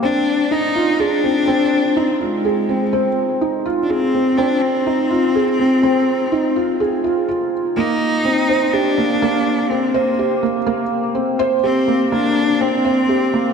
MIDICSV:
0, 0, Header, 1, 3, 480
1, 0, Start_track
1, 0, Tempo, 483871
1, 26, Time_signature, 4, 2, 24, 8
1, 13426, End_track
2, 0, Start_track
2, 0, Title_t, "Felt piano"
2, 0, Program_c, 0, 0
2, 0, Control_c, 0, 64, 127
2, 25, Note_on_c, 0, 60, 94
2, 40, Control_c, 0, 64, 0
2, 162, Note_off_c, 0, 60, 0
2, 200, Control_c, 0, 64, 127
2, 505, Note_on_c, 0, 63, 77
2, 733, Note_off_c, 0, 63, 0
2, 748, Note_on_c, 0, 65, 75
2, 975, Note_off_c, 0, 65, 0
2, 987, Note_on_c, 0, 68, 82
2, 1214, Note_off_c, 0, 68, 0
2, 1227, Note_on_c, 0, 60, 77
2, 1363, Note_off_c, 0, 60, 0
2, 1463, Note_on_c, 0, 60, 104
2, 1601, Note_off_c, 0, 60, 0
2, 1948, Note_on_c, 0, 63, 83
2, 2175, Note_off_c, 0, 63, 0
2, 2185, Note_on_c, 0, 65, 69
2, 2414, Note_off_c, 0, 65, 0
2, 2428, Note_on_c, 0, 68, 81
2, 2654, Note_off_c, 0, 68, 0
2, 2668, Note_on_c, 0, 60, 76
2, 2803, Note_off_c, 0, 60, 0
2, 2904, Note_on_c, 0, 60, 104
2, 3042, Note_off_c, 0, 60, 0
2, 3385, Note_on_c, 0, 63, 81
2, 3613, Note_off_c, 0, 63, 0
2, 3626, Note_on_c, 0, 65, 81
2, 3854, Note_off_c, 0, 65, 0
2, 3865, Note_on_c, 0, 68, 79
2, 4093, Note_off_c, 0, 68, 0
2, 4109, Note_on_c, 0, 60, 75
2, 4244, Note_off_c, 0, 60, 0
2, 4348, Note_on_c, 0, 60, 106
2, 4483, Note_off_c, 0, 60, 0
2, 4825, Note_on_c, 0, 63, 91
2, 5054, Note_off_c, 0, 63, 0
2, 5064, Note_on_c, 0, 65, 78
2, 5293, Note_off_c, 0, 65, 0
2, 5309, Note_on_c, 0, 68, 87
2, 5535, Note_off_c, 0, 68, 0
2, 5548, Note_on_c, 0, 60, 81
2, 5684, Note_off_c, 0, 60, 0
2, 5786, Note_on_c, 0, 60, 104
2, 5923, Note_off_c, 0, 60, 0
2, 6269, Note_on_c, 0, 63, 82
2, 6495, Note_off_c, 0, 63, 0
2, 6508, Note_on_c, 0, 65, 75
2, 6735, Note_off_c, 0, 65, 0
2, 6747, Note_on_c, 0, 68, 79
2, 6974, Note_off_c, 0, 68, 0
2, 6982, Note_on_c, 0, 65, 76
2, 7211, Note_off_c, 0, 65, 0
2, 7226, Note_on_c, 0, 65, 78
2, 7454, Note_off_c, 0, 65, 0
2, 7705, Note_on_c, 0, 58, 97
2, 7720, Control_c, 0, 64, 0
2, 7842, Note_off_c, 0, 58, 0
2, 7874, Control_c, 0, 64, 127
2, 8184, Note_on_c, 0, 60, 80
2, 8413, Note_off_c, 0, 60, 0
2, 8423, Note_on_c, 0, 72, 94
2, 8561, Note_off_c, 0, 72, 0
2, 8664, Note_on_c, 0, 67, 86
2, 8893, Note_off_c, 0, 67, 0
2, 8907, Note_on_c, 0, 58, 80
2, 9043, Note_off_c, 0, 58, 0
2, 9148, Note_on_c, 0, 58, 109
2, 9283, Note_off_c, 0, 58, 0
2, 9628, Note_on_c, 0, 60, 78
2, 9855, Note_off_c, 0, 60, 0
2, 9862, Note_on_c, 0, 72, 101
2, 10001, Note_off_c, 0, 72, 0
2, 10106, Note_on_c, 0, 67, 78
2, 10334, Note_off_c, 0, 67, 0
2, 10343, Note_on_c, 0, 58, 77
2, 10481, Note_off_c, 0, 58, 0
2, 10579, Note_on_c, 0, 58, 107
2, 10719, Note_off_c, 0, 58, 0
2, 11059, Note_on_c, 0, 60, 84
2, 11290, Note_off_c, 0, 60, 0
2, 11301, Note_on_c, 0, 72, 114
2, 11440, Note_off_c, 0, 72, 0
2, 11542, Note_on_c, 0, 67, 81
2, 11772, Note_off_c, 0, 67, 0
2, 11782, Note_on_c, 0, 58, 77
2, 11920, Note_off_c, 0, 58, 0
2, 12024, Note_on_c, 0, 58, 105
2, 12162, Note_off_c, 0, 58, 0
2, 12505, Note_on_c, 0, 60, 88
2, 12733, Note_off_c, 0, 60, 0
2, 12744, Note_on_c, 0, 72, 99
2, 12882, Note_off_c, 0, 72, 0
2, 12986, Note_on_c, 0, 67, 84
2, 13214, Note_off_c, 0, 67, 0
2, 13228, Note_on_c, 0, 58, 84
2, 13363, Note_off_c, 0, 58, 0
2, 13426, End_track
3, 0, Start_track
3, 0, Title_t, "Cello"
3, 0, Program_c, 1, 42
3, 27, Note_on_c, 1, 62, 112
3, 512, Note_on_c, 1, 63, 116
3, 527, Note_off_c, 1, 62, 0
3, 994, Note_on_c, 1, 62, 117
3, 1009, Note_off_c, 1, 63, 0
3, 1954, Note_on_c, 1, 60, 101
3, 1969, Note_off_c, 1, 62, 0
3, 2200, Note_on_c, 1, 56, 96
3, 2215, Note_off_c, 1, 60, 0
3, 3633, Note_off_c, 1, 56, 0
3, 3798, Note_on_c, 1, 62, 75
3, 3871, Note_on_c, 1, 60, 113
3, 3886, Note_off_c, 1, 62, 0
3, 4339, Note_on_c, 1, 62, 113
3, 4354, Note_off_c, 1, 60, 0
3, 4577, Note_on_c, 1, 60, 127
3, 4592, Note_off_c, 1, 62, 0
3, 7221, Note_off_c, 1, 60, 0
3, 7702, Note_on_c, 1, 63, 125
3, 8662, Note_on_c, 1, 62, 113
3, 8677, Note_off_c, 1, 63, 0
3, 9619, Note_on_c, 1, 60, 97
3, 9634, Note_off_c, 1, 62, 0
3, 9861, Note_on_c, 1, 58, 85
3, 9876, Note_off_c, 1, 60, 0
3, 10343, Note_off_c, 1, 58, 0
3, 11546, Note_on_c, 1, 60, 119
3, 11992, Note_off_c, 1, 60, 0
3, 12030, Note_on_c, 1, 62, 124
3, 12511, Note_on_c, 1, 60, 122
3, 12526, Note_off_c, 1, 62, 0
3, 13426, Note_off_c, 1, 60, 0
3, 13426, End_track
0, 0, End_of_file